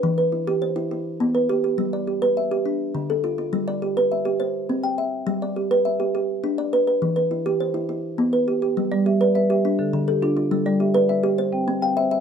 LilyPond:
<<
  \new Staff \with { instrumentName = "Marimba" } { \time 12/8 \key g \mixolydian \tempo 4. = 137 << { r1. | r1. | r1. | r1. |
r1. | r4 e''8 d''4 e''4 a'4 g'4. | a'4 e''8 d''4. r8 g''4 f''4. | } \\ { r1. | r1. | r1. | r1. |
r1. | r8 g4 r8 b'4 r8 d4 r8 d'4 | r8 g4 r8 b'4 r8 c'4 r8 c''4 | } >> }
  \new Staff \with { instrumentName = "Kalimba" } { \time 12/8 \key g \mixolydian << { b'8 b'8 e'4 c''4 e'4. b'4 g'8~ | g'8 d''8 g'4 e''4 d'4. a'4 f'8~ | f'8 d''8 g'4 e''4 c''4. g''4. | r8 d''8 g'4 e''4 g'4. d''4 b'8~ |
b'8 b'8 e'4 c''4 e'4. b'4 g'8~ | g'8 d''8 g'4 e''4 d'4. a'4 f'8~ | f'8 d''8 g'4 e''4 c''4. g''4 e''8 | } \\ { e4 r8 g'4 e'4 r8 b4 g'4 | g4 r8 b'4 g'8 r4 d4 f'4 | g4 r8 b'4 g'8 r4 c'4 e''4 | g4 r8 b'4 g'4 r8 d'4 b'4 |
e4 r8 g'4 e'4 r8 b4 g'4 | g4 r8 b'4 g'8 r4 d4 f'4 | g4 r8 b'4 g'8 r4 c'4 e''4 | } >> }
>>